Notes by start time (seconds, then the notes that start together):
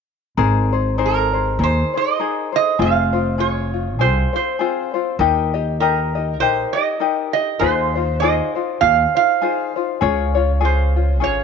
0.37 G#1 D#4 G#4 A#4 C5
0.72 D#4 G#4 C5
0.98 D#4 G#4 A#4 C5
1.06 A#4
1.33 D#4 G#4 C5
1.59 D#2 D#4 G#4 A#4 C5
1.64 C5
1.94 D#4 G#4 C5 D#5
2.20 D#4 G#4 A#4 C5
2.52 D#4 G#4 C5 D#5
2.79 F1 C4 F4 G#4 C5 F5
3.13 C4 F4 C5
3.38 F4 G#4 C#5
3.73 F4
3.99 C2 C4 F4 G#4 C5
4.33 C4 F4 C5
4.59 C4 F4 G#4 C5
4.94 C4 F4 C5
5.19 D#2 D#4 G4 A#4 D#5
5.54 D#4 G4 D#5
5.80 D#4 G4 A#4 D#5
6.15 D#4 G4 D#5
6.40 A#1 D#4 G4 A#4 C5 D#5
6.73 D#4 G4 D#5
7.00 D#4 G4 A#4 D#5
7.33 D#4 G4 D#5
7.59 D#2 D#4 F4 G#4 C5
7.95 D#4 F4 C5
8.20 D#4 F4 G#4 C5 D#5
8.55 D#4 F4 C5
8.81 D#2 D#4 F4 G#4 C5 F5
9.15 D#4 F4 C5 F5
9.42 D#4 F4 G#4 C5
9.76 D#4 F4 C5
10.01 C#2 C#4 F4 G#4 C#5
10.35 C#4 F4 C#5
10.61 C#4 F4 G#4
10.65 C5
10.96 C#4 F4
11.20 G#1 C#4 F4 G#4 C#5